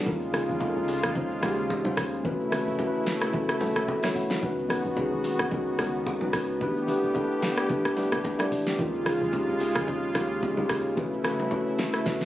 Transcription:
0.05 log drum bass D#2, analog synth pad C#3 G#3 F4, tine electric piano G#3 C#4 D#4 F4 A#4, kick, low conga, shaker
0.22 shaker
0.32 tine electric piano G#3 C#4 D#4 F4 A#4, cross-stick, open hi-hat, low conga, shaker
0.49 log drum bass D#2, shaker
0.60 tine electric piano G#3 C#4 D#4 F4 A4, kick, high bongo, shaker
0.69 tine electric piano A#4
0.76 log drum bass C#2, shaker
0.88 open hi-hat, high bongo, shaker
1.03 log drum bass D#2, cross-stick, shaker
1.14 tine electric piano G#3 C#4 D#4 F4 C5, kick, low conga, shaker
1.30 shaker
1.41 log drum bass D#2, tine electric piano G#3 C#4 D#4 F4 G4, cross-stick, open hi-hat, low bongo, shaker
1.58 shaker
1.70 kick, high bongo, shaker
1.83 log drum bass C#2, tine electric piano G#3 C#4 D#4 F4 C5, low bongo, shaker
1.97 log drum bass D#2, kick, cross-stick, open hi-hat, shaker
2.12 shaker
2.23 log drum bass B1, analog synth pad C#3 A3 E4, tine electric piano A3 C#4 E4 F#4 B4, kick, low conga, shaker
2.41 shaker
2.50 tine electric piano A3 C#4 E4 F#4 B4, cross-stick, open hi-hat, low conga, shaker
2.67 log drum bass A1, shaker
2.78 tine electric piano A3 C#4 E4 F#4 A#4, kick, high bongo, shaker
2.87 tine electric piano B4
2.95 shaker
3.06 snare, open hi-hat, shaker
3.21 cross-stick, shaker
3.33 log drum bass B1, tine electric piano A3 C#4 E4 F#4 A4, kick, low conga, shaker
3.49 cross-stick, shaker
3.60 log drum bass A1, tine electric piano A3 C#4 E4 F#4 A4, open hi-hat, low bongo, shaker
3.76 log drum bass B1, cross-stick, shaker
3.88 log drum bass A1, tine electric piano B5, kick, high bongo, shaker
4.02 tine electric piano A3 C#4 E4 F#4 C#5, cross-stick, snare, low bongo, shaker
4.16 log drum bass B1, tine electric piano F#5, kick, open hi-hat, shaker
4.30 snare, high bongo, shaker
4.41 log drum bass C#2, analog synth pad D#3 B3 F#4, tine electric piano G#3 C#4 D#4 F#4 B4, kick, low conga, shaker
4.59 shaker
4.68 tine electric piano G#3 C#4 D#4 F#4 B4, cross-stick, open hi-hat, low conga, shaker
4.85 log drum bass C#2, shaker
4.96 tine electric piano G#3 C#4 D#4 F#4 G#4, kick, high bongo, shaker
5.12 log drum bass B1, shaker
5.24 open hi-hat, high bongo, shaker
5.39 log drum bass C#2, cross-stick, shaker
5.51 tine electric piano G#3 C#4 D#4 F#4 A#4, kick, low conga, shaker
5.67 shaker
5.78 log drum bass C#2, tine electric piano G#3 C#4 D#4 F#4 A#4, cross-stick, open hi-hat, low bongo, shaker
5.94 shaker
6.06 kick, high bongo, shaker
6.20 log drum bass B1, tine electric piano G#3 C#4 D#4 F#4 B4, low bongo, shaker
6.33 log drum bass C#2, kick, cross-stick, open hi-hat, shaker
6.48 shaker
6.60 log drum bass A1, analog synth pad D3 G4, tine electric piano A3 D4 E4 G4 B4, kick, low conga, shaker
6.77 shaker
6.87 tine electric piano A3 D4 E4 G4 B4, open hi-hat, low conga, shaker
7.03 log drum bass G1, shaker
7.14 tine electric piano A3 D4 E4 G4 A4, kick, high bongo, shaker
7.24 tine electric piano B4
7.31 shaker
7.42 snare, open hi-hat, high bongo, shaker
7.57 cross-stick, shaker
7.69 log drum bass A1, tine electric piano A3 D4 E4 G4 B4, kick, low conga, shaker
7.85 log drum bass G1, cross-stick, shaker
7.96 tine electric piano A3 D4 E4 G4 B4, open hi-hat, low bongo, shaker
8.12 log drum bass A1, cross-stick, shaker
8.25 log drum bass G1, kick, high bongo, shaker
8.38 tine electric piano A3 D4 E4 G4 D5, cross-stick, low bongo, shaker
8.52 log drum bass A1, kick, open hi-hat, shaker
8.66 snare, shaker
8.78 log drum bass D#2, analog synth pad C#3 G#3 F4, tine electric piano G#3 C#4 D#4 F4 A#4, kick, low conga, shaker
8.95 shaker
9.05 tine electric piano G#3 C#4 D#4 F4 G#4, cross-stick, open hi-hat, low conga, shaker
9.21 log drum bass D#2, shaker
9.32 tine electric piano G#3 C#4 D#4 F4 G4, kick, high bongo, shaker
9.48 log drum bass C#2, shaker
9.60 open hi-hat, high bongo, shaker
9.75 log drum bass D#2, cross-stick, shaker
9.87 tine electric piano G#3 C#4 D#4 F4 G#4, kick, low conga, shaker
10.03 shaker
10.14 log drum bass D#2, tine electric piano G#3 C#4 D#4 F4 G4, cross-stick, open hi-hat, low bongo, shaker
10.30 shaker
10.43 kick, high bongo, shaker
10.56 log drum bass C#2, tine electric piano G#3 C#4 D#4 F4 G4, low bongo, shaker
10.69 log drum bass D#2, kick, cross-stick, open hi-hat, shaker
10.84 shaker
10.96 log drum bass B1, tine electric piano A3 C#4 E4 F#4 B4, analog synth pad A3 E4, kick, low conga, shaker
11.13 shaker
11.23 tine electric piano A3 C#4 E4 F#4 B4, cross-stick, open hi-hat, low conga, shaker
11.39 log drum bass A1, low bongo, shaker
11.50 tine electric piano A3 C#4 E4 F#4 B4, kick, high bongo, shaker
11.67 shaker
11.79 snare, open hi-hat, high bongo, low bongo, shaker
11.94 cross-stick, shaker
12.05 log drum bass B1, tine electric piano A3 C#4 E4 F#4 B4, kick, snare, low conga, shaker
12.21 log drum bass A1, snare, shaker

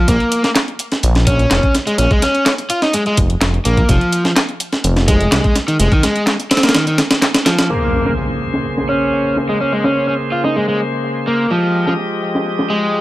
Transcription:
0.08 detuned saw bass A#1, overdriven electric guitar A#3, kick, closed hi-hat
0.20 closed hi-hat
0.32 closed hi-hat
0.44 overdriven electric guitar A#3, snare, closed hi-hat
0.55 snare, clap, closed hi-hat
0.68 closed hi-hat
0.79 closed hi-hat
0.92 snare, closed hi-hat
1.03 detuned saw bass A#1, closed hi-hat
1.15 snare, closed hi-hat
1.27 overdriven electric guitar C#4, kick, closed hi-hat
1.39 closed hi-hat
1.51 detuned saw bass F1, snare, clap, closed hi-hat
1.63 kick, closed hi-hat
1.75 snare, closed hi-hat
1.87 overdriven electric guitar G#3, closed hi-hat
1.98 detuned saw bass A#1, overdriven electric guitar C#4, closed hi-hat
2.11 overdriven electric guitar G#3, kick, closed hi-hat
2.22 overdriven electric guitar C#4, snare, closed hi-hat
2.35 closed hi-hat
2.46 overdriven electric guitar C#4, snare, clap, closed hi-hat
2.58 closed hi-hat
2.70 overdriven electric guitar F4, closed hi-hat
2.82 overdriven electric guitar D#4, snare, closed hi-hat
2.93 overdriven electric guitar G#3, closed hi-hat
3.06 overdriven electric guitar G#3, closed hi-hat
3.17 detuned saw bass F1, kick, closed hi-hat
3.30 closed hi-hat
3.41 detuned saw bass F1, snare, clap, closed hi-hat
3.54 closed hi-hat
3.65 detuned saw bass A#1, overdriven electric guitar A#3, closed hi-hat
3.77 kick, closed hi-hat
3.89 detuned saw bass F1, overdriven electric guitar F3, kick, closed hi-hat
4.01 closed hi-hat
4.12 closed hi-hat
4.25 overdriven electric guitar F3, snare, closed hi-hat
4.36 snare, clap, closed hi-hat
4.49 closed hi-hat
4.60 closed hi-hat
4.73 snare, closed hi-hat
4.84 detuned saw bass F1, closed hi-hat
4.96 snare, closed hi-hat
5.08 overdriven electric guitar G#3, kick, closed hi-hat
5.21 closed hi-hat
5.32 detuned saw bass C2, snare, clap, closed hi-hat
5.44 kick, closed hi-hat
5.55 snare, closed hi-hat
5.68 overdriven electric guitar D#3, closed hi-hat
5.79 detuned saw bass F1, overdriven electric guitar G#3, closed hi-hat
5.92 overdriven electric guitar D#3, kick, closed hi-hat
6.03 overdriven electric guitar G#3, snare, closed hi-hat
6.16 closed hi-hat
6.27 overdriven electric guitar G#3, snare, clap, closed hi-hat
6.39 closed hi-hat
6.51 overdriven electric guitar C4, snare, closed hi-hat
6.57 snare, closed hi-hat
6.63 overdriven electric guitar A#3, snare, closed hi-hat
6.69 snare, closed hi-hat
6.74 overdriven electric guitar D#3, snare, closed hi-hat
6.87 overdriven electric guitar D#3, closed hi-hat
6.98 snare, closed hi-hat
7.11 snare, closed hi-hat
7.22 snare, clap, closed hi-hat
7.34 snare, closed hi-hat
7.46 overdriven electric guitar F3, snare, closed hi-hat
7.58 snare, closed hi-hat
7.70 tonewheel organ C#3 A#3 G#4 C5, overdriven electric guitar A#3, closed hi-hat, impact
7.94 closed hi-hat
8.06 overdriven electric guitar A#3, snare
8.17 closed hi-hat
8.41 closed hi-hat
8.54 snare
8.65 closed hi-hat
8.77 snare
8.89 overdriven electric guitar C#4, closed hi-hat
9.13 closed hi-hat
9.37 snare, closed hi-hat
9.49 overdriven electric guitar G#3, closed hi-hat
9.60 overdriven electric guitar C#4, closed hi-hat
9.72 overdriven electric guitar G#3
9.84 overdriven electric guitar C#4, snare, closed hi-hat
10.08 overdriven electric guitar C#4, closed hi-hat
10.20 closed hi-hat
10.32 overdriven electric guitar F4, closed hi-hat
10.44 overdriven electric guitar D#4, snare
10.56 overdriven electric guitar G#3, closed hi-hat
10.68 overdriven electric guitar G#3
10.80 closed hi-hat
11.04 closed hi-hat
11.27 overdriven electric guitar A#3, closed hi-hat
11.51 overdriven electric guitar F3, tonewheel organ F3 G#3 G4 D#5, closed hi-hat
11.75 closed hi-hat
11.87 overdriven electric guitar F3, snare
11.99 closed hi-hat
12.23 closed hi-hat
12.35 snare
12.46 closed hi-hat
12.59 snare
12.70 overdriven electric guitar G#3, closed hi-hat
12.94 closed hi-hat

